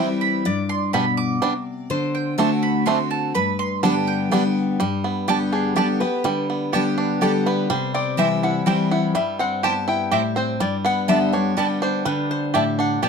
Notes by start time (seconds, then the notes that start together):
Already playing: E3 G3 C4 E4 E5 G5
0.21 B5
0.45 G2 D5
0.69 C6
0.93 B2 G3 B3 D4 B5
1.17 D6
1.42 C3 G3 B3 D4
1.90 D3 C5
2.15 G5
2.38 D3 A3 C4 D4 F#4 A5
2.63 B5
2.86 D3 A3 C4 D4 F#4 C6
3.11 A5
3.35 G2 B4 B5
3.59 C6
3.83 D3 G3 B3 D4 G4 A5
4.07 G5
4.31 D3 G3 B3 D4 G4
4.80 G2 G3
5.04 B3
5.28 D3 G3 B3 G4 D5 A5
5.52 D4 G#4
5.76 D3 G3 B3 G4 A4 D5 A5
6.00 B3 G4 B4
6.24 D3 G3
6.50 B3
6.73 D3 G3 B3 G4 D5 A5
6.98 D4
7.21 D3 G3 B3 G4 A4 D5 A5
7.46 B3 B4
7.70 C3 G3 C5
7.94 C4 D5
8.17 E3 G3 C4 E4 C5 E5 G5
8.43 E4 F#5
8.66 E3 G3 C4 E4 C5 G5
8.91 E4 F#5
9.15 G2 G3 E5
9.39 C4 F#5
9.63 B3 C4 E4 G4 C5 G5 A5
9.88 E4 G5
10.11 A2 C4 E4 G4 C5 E5 G5
10.36 C4 C5
10.60 G2 G3 D5
10.85 B3 F#5
11.08 D3 G3 B3 G4 D5 E5 A5
11.33 B3 D4 G4 C#5
11.57 D3 G3 B3 G4 D5 A5
11.82 D4 C5
12.05 D3 G3 B4
12.31 C5
12.54 A2 B3 G4 D5 E5 A5
12.79 D4 F#5
13.03 B2 B3 G4 D5 G5 A5